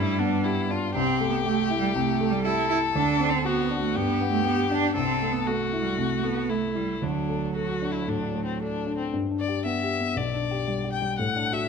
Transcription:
Already playing: G2 G3 E4
0.19 B3 D4
0.44 E4 G4
0.70 D4 F4
0.95 C2 C4 G4
1.20 A3
1.29 B3
1.44 A3 G4
1.71 E4
1.79 G3
1.95 C2 A3
2.20 A3
2.30 G3
2.45 E4 G4 A4
2.70 E4
2.94 D2 D4
3.20 C4
3.30 C4
3.45 B3 F#4
3.70 D4
3.80 A3
3.95 G2 B3 G4
4.21 B3
4.30 A3
4.45 B3 G4
4.71 D4
4.95 C2 C4 A4
5.22 A3
5.32 B3
5.47 A3 F#4 A4
5.73 E4
5.82 G3
5.97 C2 A3
6.24 A3 B3
6.49 A3 E4 A4
6.75 G3 E4
7.02 D2 F#3 D4
7.29 A3
7.55 F#4 A4
7.82 D4
7.92 E4
8.08 A2 D4
8.35 A3
8.45 C4
8.61 D4 A4
8.87 D4
8.97 C4
9.13 G2
9.31 D4
9.40 D5
9.48 G4
9.65 B3 E5
9.83 G4
10.01 B3
10.16 B1 D5
10.34 D4
10.51 G4
10.68 G3
10.84 G4
10.93 G5
11.02 G3
11.18 A2 F#5
11.36 D4
11.52 F#4 E5

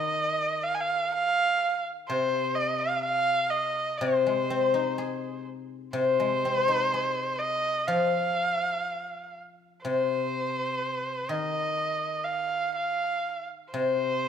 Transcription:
Already playing: D#3 D#5
0.64 F5
0.75 G#5
0.81 F5
1.14 F5
2.09 C3 C5
2.55 D#5
2.80 F5
3.04 F5
3.51 D#5
3.98 C3 C5
4.27 G#3
4.50 C4
4.74 D#4
4.98 G#4
5.93 C3 C5
6.20 G#3
6.45 C4
6.68 D#4
6.94 G#4
7.39 D#5
7.88 F3 F5
9.85 C3 C5
11.29 D#3 D#5
12.24 F5
12.75 F5
13.72 C3 C5

